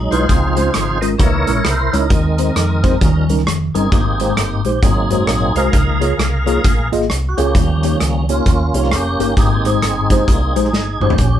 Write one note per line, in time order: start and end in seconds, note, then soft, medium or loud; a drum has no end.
0.00 0.25 F#3 soft
0.00 0.25 G#3 soft
0.00 0.26 D#4 soft
0.11 0.26 B1 medium
0.11 0.24 G#3 medium
0.11 0.24 D#4 medium
0.11 0.24 E4 medium
0.11 0.98 F4 medium
0.11 0.98 G#4 medium
0.11 0.24 B4 medium
0.11 1.05 C5 loud
0.11 closed hi-hat medium
0.28 0.68 C#2 loud
0.28 0.98 C#3 medium
0.28 0.98 F3 soft
0.28 0.98 C4 soft
0.28 0.98 D#4 soft
0.28 kick medium
0.28 closed hi-hat medium
0.57 0.69 G#3 medium
0.57 0.69 C#4 medium
0.57 0.69 F4 medium
0.57 0.69 C5 medium
0.57 closed hi-hat medium
0.74 1.13 G#1 medium
0.74 cross-stick medium
0.74 closed hi-hat medium
1.01 1.14 G#3 medium
1.01 1.14 C#4 medium
1.01 1.14 F4 medium
1.01 1.14 A#4 medium
1.01 1.09 D#5 loud
1.01 closed hi-hat medium
1.18 1.43 C#2 medium
1.18 1.89 C#3 medium
1.18 1.52 E3 medium
1.18 1.52 A#3 soft
1.18 1.52 D#4 medium
1.18 2.06 E4 medium
1.18 1.90 A#4 medium
1.18 1.66 C#5 medium
1.18 kick loud
1.18 closed hi-hat medium
1.47 1.63 A#1 medium
1.47 1.59 G#3 medium
1.47 1.59 C#4 medium
1.47 1.59 E4 medium
1.47 1.59 A#4 medium
1.47 closed hi-hat medium
1.64 1.89 C2 medium
1.64 1.93 C5 medium
1.64 cross-stick loud
1.64 closed hi-hat medium
1.92 2.08 C#2 medium
1.92 2.05 G#3 medium
1.92 2.05 C#4 medium
1.92 3.25 D#4 medium
1.92 2.05 E4 medium
1.92 3.24 A#4 medium
1.92 2.05 C#5 medium
1.92 cross-stick soft
1.92 closed hi-hat medium
2.09 2.49 D#2 medium
2.09 2.97 D#3 soft
2.09 2.80 D#3 medium
2.09 2.97 G#3 soft
2.09 2.97 C4 soft
2.09 kick loud
2.09 closed hi-hat medium
2.38 2.50 G#3 medium
2.38 2.50 C4 medium
2.38 2.50 D#4 medium
2.38 2.51 C5 medium
2.38 closed hi-hat medium
2.56 2.94 F2 medium
2.56 cross-stick loud
2.56 closed hi-hat medium
2.83 2.95 G#3 medium
2.83 2.95 C4 medium
2.83 2.96 D#4 medium
2.83 2.95 C5 medium
2.83 kick medium
2.83 closed hi-hat medium
3.01 3.25 D#2 medium
3.01 3.71 D#3 medium
3.01 3.34 F3 soft
3.01 3.35 G3 soft
3.01 3.35 C#4 soft
3.01 kick loud
3.01 closed hi-hat medium
3.28 3.43 C#2 medium
3.28 3.41 G3 medium
3.28 3.41 C#4 medium
3.28 3.41 D#4 medium
3.28 3.41 A#4 medium
3.28 closed hi-hat medium
3.39 cross-stick soft
3.46 3.70 F1 medium
3.46 cross-stick loud
3.46 closed hi-hat medium
3.74 3.89 G1 medium
3.74 3.86 G3 medium
3.74 3.92 C4 medium
3.74 3.87 C#4 medium
3.74 4.61 D#4 medium
3.74 3.87 D#4 medium
3.74 4.33 G#4 loud
3.74 3.86 A#4 medium
3.74 closed hi-hat medium
3.92 4.30 G#1 medium
3.92 4.62 G#2 medium
3.92 4.62 A#3 soft
3.92 4.62 C4 soft
3.92 4.62 G4 soft
3.92 kick loud
3.92 closed hi-hat medium
4.20 4.32 G#3 medium
4.20 4.32 D#4 medium
4.20 4.32 G4 medium
4.20 4.32 C5 medium
4.20 closed hi-hat medium
4.36 4.60 G1 medium
4.36 cross-stick loud
4.36 closed hi-hat medium
4.64 4.80 A#1 medium
4.64 4.77 G#3 medium
4.64 4.77 D#4 medium
4.64 4.83 G4 medium
4.64 4.77 G4 medium
4.64 4.77 C5 medium
4.64 closed hi-hat medium
4.82 5.06 G#1 medium
4.82 5.53 G#2 medium
4.82 5.52 F#3 soft
4.82 5.52 A#3 soft
4.82 5.53 C4 soft
4.82 5.70 D#4 medium
4.82 5.56 G#4 medium
4.82 kick loud
4.82 closed hi-hat medium
5.10 5.25 F#1 medium
5.10 5.23 G#3 medium
5.10 5.23 D#4 medium
5.10 5.23 F#4 medium
5.10 5.23 C5 medium
5.10 closed hi-hat medium
5.27 5.51 A#1 medium
5.27 cross-stick loud
5.27 closed hi-hat medium
5.55 5.70 C2 medium
5.55 5.68 G#3 medium
5.55 5.68 D#4 medium
5.55 5.68 F#4 medium
5.55 6.89 G#4 medium
5.55 6.89 A#4 medium
5.55 5.68 C5 medium
5.55 6.88 F5 medium
5.55 closed hi-hat medium
5.71 6.12 C#2 loud
5.71 6.44 C#3 medium
5.71 6.06 F3 soft
5.71 6.06 A#3 soft
5.71 6.06 D#4 soft
5.71 kick medium
5.71 closed hi-hat medium
6.01 6.13 A#3 medium
6.01 6.13 F4 medium
6.01 6.13 G#4 medium
6.01 6.13 C#5 medium
6.01 closed hi-hat medium
6.18 6.57 C2 medium
6.18 cross-stick medium
6.18 closed hi-hat medium
6.46 6.62 F3 soft
6.46 6.62 A#3 soft
6.46 6.59 A#3 medium
6.46 6.62 D#4 soft
6.46 6.58 F4 medium
6.46 6.58 G#4 medium
6.46 6.59 C#5 medium
6.46 closed hi-hat medium
6.64 6.88 A#1 loud
6.64 kick loud
6.64 closed hi-hat medium
6.92 7.07 G#1 medium
6.92 7.04 A#3 medium
6.92 7.04 F4 medium
6.92 7.04 G#4 medium
6.92 7.04 D#5 medium
6.92 closed hi-hat medium
7.02 cross-stick soft
7.10 7.34 C2 medium
7.10 cross-stick medium
7.10 closed hi-hat medium
7.29 7.38 F#4 medium
7.37 7.53 C#2 medium
7.37 8.25 A#3 medium
7.37 7.50 A#3 medium
7.37 7.55 C#4 medium
7.37 7.50 F4 medium
7.37 7.96 G4 loud
7.37 7.50 G#4 medium
7.37 7.50 C#5 medium
7.37 closed hi-hat medium
7.54 7.93 D#2 loud
7.54 8.25 D#3 medium
7.54 8.25 F3 soft
7.54 8.25 G3 soft
7.54 8.25 C#4 soft
7.54 kick medium
7.54 closed hi-hat medium
7.83 7.95 A#3 medium
7.83 7.96 D#4 medium
7.83 7.96 G4 medium
7.83 7.96 C#5 medium
7.83 closed hi-hat medium
8.00 8.39 C#2 medium
8.00 cross-stick medium
8.00 closed hi-hat medium
8.29 8.93 A#3 medium
8.29 8.41 A#3 medium
8.29 8.74 C#4 medium
8.29 8.41 D#4 medium
8.29 8.94 F4 medium
8.29 8.41 G4 medium
8.29 8.41 C#5 medium
8.29 closed hi-hat medium
8.46 8.70 D#2 medium
8.46 kick medium
8.46 closed hi-hat medium
8.73 8.93 C2 medium
8.73 8.90 F3 soft
8.73 8.91 G3 soft
8.73 8.86 A#3 medium
8.73 8.91 C#4 soft
8.73 8.86 D#4 medium
8.73 8.86 G4 medium
8.73 8.86 C#5 medium
8.73 closed hi-hat medium
8.84 cross-stick soft
8.91 9.15 F1 medium
8.91 9.35 A#3 medium
8.91 9.35 C#4 medium
8.91 9.35 G4 loud
8.91 cross-stick medium
8.91 closed hi-hat medium
9.19 9.34 G1 medium
9.19 9.31 A#3 medium
9.19 9.32 D#4 medium
9.19 9.32 G4 medium
9.19 9.32 A#4 medium
9.19 closed hi-hat medium
9.37 9.76 G#1 medium
9.37 10.07 G#2 medium
9.37 9.71 A#3 soft
9.37 10.29 C4 medium
9.37 10.98 D#4 medium
9.37 9.71 G4 soft
9.37 11.07 G#4 medium
9.37 kick medium
9.37 closed hi-hat medium
9.65 9.77 G#3 medium
9.65 9.77 D#4 medium
9.65 9.77 G4 medium
9.65 9.77 C5 medium
9.65 closed hi-hat medium
9.82 10.21 G1 medium
9.82 cross-stick loud
9.82 closed hi-hat medium
10.10 10.23 G#3 medium
10.10 10.23 D#4 medium
10.10 10.23 G4 medium
10.10 10.23 C5 medium
10.10 kick medium
10.10 closed hi-hat medium
10.27 10.51 C2 medium
10.27 10.54 G3 soft
10.27 10.54 A#3 soft
10.27 10.54 C4 medium
10.27 kick medium
10.27 closed hi-hat medium
10.55 10.72 A#1 medium
10.55 10.68 G#3 medium
10.55 10.68 D#4 medium
10.55 10.68 G4 medium
10.55 10.68 C5 medium
10.55 closed hi-hat medium
10.65 cross-stick soft
10.72 10.96 G1 medium
10.72 snare medium
11.00 11.15 G#1 medium
11.00 11.13 G#3 medium
11.00 11.40 C#4 medium
11.00 11.13 D#4 medium
11.00 11.40 G4 medium
11.00 11.14 G4 medium
11.00 11.14 C5 medium
11.00 mid tom medium
11.10 floor tom medium
11.18 11.40 A#1 medium
11.18 11.40 A#2 medium
11.18 kick medium
11.18 closed hi-hat medium